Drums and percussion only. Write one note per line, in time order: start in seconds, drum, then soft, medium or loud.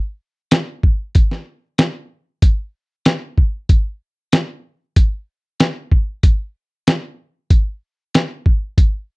0.51 snare loud
0.51 closed hi-hat medium
0.83 kick medium
1.15 kick loud
1.15 closed hi-hat medium
1.31 snare soft
1.78 snare loud
1.78 closed hi-hat medium
2.42 kick loud
2.42 closed hi-hat medium
3.05 snare loud
3.05 closed hi-hat medium
3.38 kick medium
3.69 kick loud
3.69 closed hi-hat medium
4.32 snare loud
4.32 closed hi-hat medium
4.96 kick loud
4.96 closed hi-hat medium
5.60 snare loud
5.60 closed hi-hat medium
5.91 kick medium
6.23 kick loud
6.23 closed hi-hat medium
6.87 snare loud
6.87 closed hi-hat medium
7.50 kick loud
7.50 closed hi-hat medium
8.15 snare loud
8.15 closed hi-hat medium
8.46 kick medium
8.78 kick loud
8.78 closed hi-hat medium